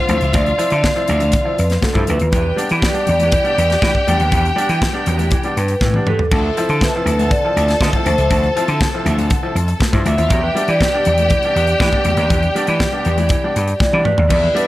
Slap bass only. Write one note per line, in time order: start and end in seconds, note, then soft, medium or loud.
0.09 0.17 D2 medium
0.22 0.30 C#2 medium
0.34 0.51 D2 loud
0.72 0.88 D3 medium
1.09 1.34 D2 medium
1.59 1.76 F2 loud
1.95 2.04 G2 medium
2.09 2.17 D2 medium
2.21 2.29 D#2 medium
2.33 2.50 E2 loud
2.71 2.88 E3 medium
3.09 3.34 E2 medium
3.58 3.75 E2 medium
3.82 3.91 E3 loud
4.08 4.16 E2 medium
4.20 4.28 D#2 medium
4.32 4.49 E2 loud
4.69 4.86 E3 medium
5.07 5.32 E2 medium
5.57 5.74 G2 medium
5.81 5.98 A2 medium
6.32 6.49 D2 loud
6.69 6.86 D3 medium
7.06 7.31 D2 medium
7.56 7.73 D2 medium
7.81 7.89 D3 medium
8.06 8.14 D2 medium
8.18 8.27 C#2 medium
8.31 8.48 D2 loud
8.68 8.85 D3 medium
9.06 9.31 D2 medium
9.55 9.72 F2 loud
9.93 10.02 G2 loud
10.06 10.14 D2 loud
10.18 10.27 D#2 medium
10.30 10.47 E2 loud
10.68 10.85 E3 medium
11.06 11.31 E2 medium
11.56 11.72 E2 medium
11.81 11.89 E3 loud
12.05 12.13 E2 loud
12.17 12.25 D#2 medium
12.31 12.47 E2 loud
12.68 12.85 E3 medium
13.06 13.31 E2 medium
13.56 13.73 G2 medium
13.93 14.02 E3 loud
14.19 14.27 D#2 medium
14.31 14.47 E2 loud